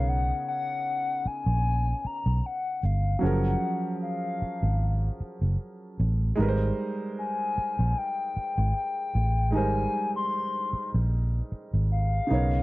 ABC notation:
X:1
M:4/4
L:1/16
Q:"Swing 16ths" 1/4=76
K:Ab
V:1 name="Soft synth lead"
^f2 f4 a4 ^a2 f2 =f2 | _g4 f8 z4 | z4 a4 g4 g4 | a3 c'4 z4 z f4 |]
V:2 name="Grand piano"
[^C,=B,^D^A^c]12- [C,B,DAc]2 z2 | [F,_G,DAB]16 | [G,A,EB_c=c]16 | [G,A,EBc]12- [G,A,EBc]2 [^C,=B,^D^A^c]2 |]
V:3 name="Fingered electric bass" clef=bass
=B,,,2 z4 z ^A,,,3 z B,,, z2 G,,,2 | _G,,,2 z4 z A,,,3 z G,,, z2 =A,,,2 | A,,,2 z4 z B,,, z3 A,,, z2 =A,,,2 | A,,,2 z4 z B,,,3 z A,,,3 =B,,,2 |]